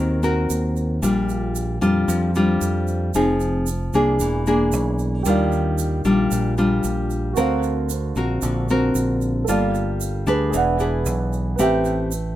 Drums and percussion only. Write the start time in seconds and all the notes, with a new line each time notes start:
0.23 shaker
0.50 shaker
0.76 shaker
1.03 shaker
1.29 shaker
1.55 shaker
1.82 shaker
2.09 shaker
2.35 shaker
2.61 shaker
2.87 shaker
3.14 shaker
3.40 shaker
3.67 shaker
3.93 shaker
4.20 shaker
4.46 shaker
4.72 shaker
4.99 shaker
5.25 shaker
5.52 shaker
5.78 shaker
6.05 shaker
6.31 shaker
6.58 shaker
6.84 shaker
7.10 shaker
7.36 shaker
7.63 shaker
7.90 shaker
8.15 shaker
8.42 shaker
8.69 shaker
8.95 shaker
9.21 shaker
9.48 shaker
9.75 shaker
10.01 shaker
10.27 shaker
10.53 shaker
10.79 shaker
11.06 shaker
11.33 shaker
11.59 shaker
11.85 shaker
12.12 shaker